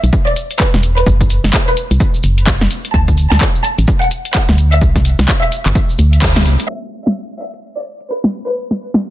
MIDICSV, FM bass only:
0, 0, Header, 1, 2, 480
1, 0, Start_track
1, 0, Tempo, 468750
1, 1092, Time_signature, 4, 2, 24, 8
1, 9319, End_track
2, 0, Start_track
2, 0, Title_t, "FM bass"
2, 0, Program_c, 0, 39
2, 36, Note_on_c, 0, 35, 102
2, 112, Note_off_c, 0, 35, 0
2, 756, Note_on_c, 0, 28, 85
2, 1060, Note_off_c, 0, 28, 0
2, 1090, Note_on_c, 0, 30, 86
2, 1427, Note_off_c, 0, 30, 0
2, 1475, Note_on_c, 0, 30, 91
2, 1551, Note_off_c, 0, 30, 0
2, 1956, Note_on_c, 0, 36, 104
2, 2032, Note_off_c, 0, 36, 0
2, 2291, Note_on_c, 0, 30, 84
2, 2739, Note_off_c, 0, 30, 0
2, 3011, Note_on_c, 0, 38, 97
2, 3347, Note_off_c, 0, 38, 0
2, 3395, Note_on_c, 0, 38, 93
2, 3471, Note_off_c, 0, 38, 0
2, 3875, Note_on_c, 0, 33, 103
2, 3951, Note_off_c, 0, 33, 0
2, 4595, Note_on_c, 0, 38, 85
2, 4930, Note_on_c, 0, 36, 86
2, 4946, Note_off_c, 0, 38, 0
2, 5267, Note_off_c, 0, 36, 0
2, 5315, Note_on_c, 0, 36, 91
2, 5391, Note_off_c, 0, 36, 0
2, 5795, Note_on_c, 0, 31, 99
2, 5871, Note_off_c, 0, 31, 0
2, 6131, Note_on_c, 0, 38, 88
2, 6609, Note_on_c, 0, 36, 100
2, 6625, Note_off_c, 0, 38, 0
2, 6725, Note_off_c, 0, 36, 0
2, 9319, End_track
0, 0, End_of_file